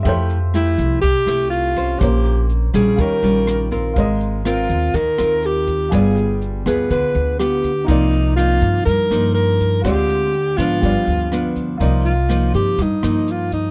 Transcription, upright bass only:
\new Staff \with { instrumentName = "Upright bass" } { \clef bass \time 4/4 \key c \minor \tempo 4 = 122 f,4. c,8 c,16 r16 c,4. | bes,,4. bes,,8 ees,16 r16 bes,,4. | aes,,4. ees,8 ees,16 r16 ees,4. | g,,4. d,8 d,16 r16 d,4. |
c,4. g,8 g,16 r16 g,4. | d,4. aes,8 g,,16 r16 d,4. | c,4. g,8 g,16 r16 g,4. | }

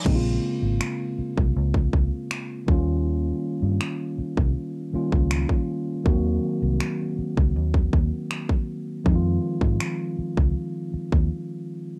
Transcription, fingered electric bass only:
\new Staff \with { instrumentName = "Fingered electric bass" } { \clef bass \time 4/4 \key bes \minor \tempo 4 = 80 bes,,8 r16 aes,,16 r8. c,16 des,8 des,16 r8. ees,8~ | ees,8 r16 g,16 r8. c,16 r8. des,8 r8. | ees,8 r16 c,16 r8. des,16 ees,8 ees,16 r4 r16 | f,8 r16 aes,16 r8. des,16 r8. ees,16 r4 | }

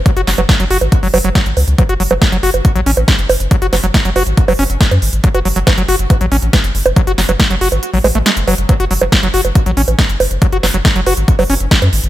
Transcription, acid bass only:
\new Staff \with { instrumentName = "Acid bass" } { \clef bass \time 4/4 \key fis \minor \tempo 4 = 139 fis16 fis'16 fis16 fis16 a16 fis16 fis'16 r8 fis16 fis16 fis16 fis16 r8. | fis16 fis'16 fis16 fis16 a16 fis16 fis'16 r8 fis16 cis'16 r16 gis16 r8. | fis16 fis'16 fis16 fis16 a16 fis16 fis'16 r8 fis16 cis'16 r16 gis16 r8. | fis16 fis'16 fis16 fis16 a16 fis16 fis'16 r8 fis16 cis'16 r16 gis16 r8. |
fis16 fis'16 fis16 fis16 a16 fis16 fis'16 r8 fis16 gis16 a16 gis16 r16 fis16 r16 | fis16 fis'16 fis16 fis16 a16 fis16 fis'16 r8 fis16 cis'16 r16 gis16 r8. | fis16 fis'16 fis16 fis16 a16 fis16 fis'16 r8 fis16 cis'16 r16 gis16 r8. | }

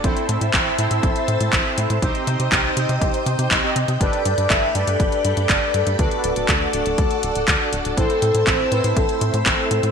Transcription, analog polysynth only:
\new Staff \with { instrumentName = "Analog polysynth" } { \time 4/4 \key a \dorian \tempo 4 = 121 <c' e' a' c''>4. <c' e' a' c''>2~ <c' e' a' c''>8 | <c' ees' g' c''>4. <c' ees' g' c''>4.~ <c' ees' g' c''>16 <c' ees' g' ees''>16 r8 | <d' g' a' b'>4. <d' g' a' b'>2~ <d' g' a' b'>8 | <d' fis' a' d''>4. <d' fis' a' d''>2~ <d' fis' a' d''>8 |
<c' e' a' c''>4. <c' e' a' c''>2~ <c' e' a' c''>8 | }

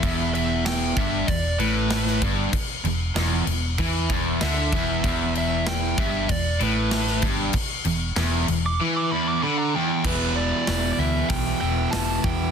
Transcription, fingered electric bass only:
\new Staff \with { instrumentName = "Fingered electric bass" } { \clef bass \time 4/4 \key e \minor \tempo 4 = 96 e,,4. g,,8 e,,8 a,,4 g,,8 | r8 e,,8 e,,8 e,,8 e,8 e,,8 d,8 e,,8 | e,,4. g,,8 e,,8 a,,4 g,,8 | r8 e,,8 e,,8 e,,8 r2 |
e,,4 e,,8 d,8 b,,8 e,,8 e,,8 e,8 | }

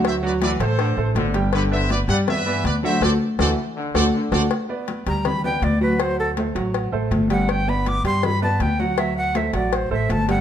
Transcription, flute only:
\new Staff \with { instrumentName = "Flute" } { \time 4/4 \key g \major \tempo 4 = 161 r1 | r1 | r1 | r4. bes''8 b''8 g''8 d''8 b'8 |
c''8 a'8 r2 r8 fis''8 | g''8 b''8 d'''8 c'''8 b''8 a''8 g''8 fis''8 | e''8 fis''8 e''8 d''8 c''8 e''8 a''8 fis''8 | }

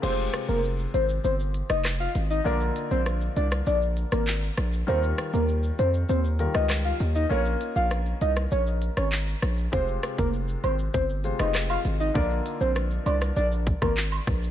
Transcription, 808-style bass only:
\new Staff \with { instrumentName = "808-style bass" } { \clef bass \time 4/4 \key f \minor \tempo 4 = 99 f,,8 r16 f,,8. aes,,8 g,,8. f,,8. aes,,8 | bes,,8 r16 bes,,8. c,8 bes,,8. aes,,8. bes,,8 | ees,8 r16 ees,8. f,8 ees,8. des,8. ees,8 | bes,,8 r16 bes,,8. c,8 bes,,8. aes,,8. bes,,8 |
f,,8 r16 f,,8. aes,,8 g,,8. f,,8. aes,,8 | bes,,8 r16 bes,,8. c,8 bes,,8. aes,,8. bes,,8 | }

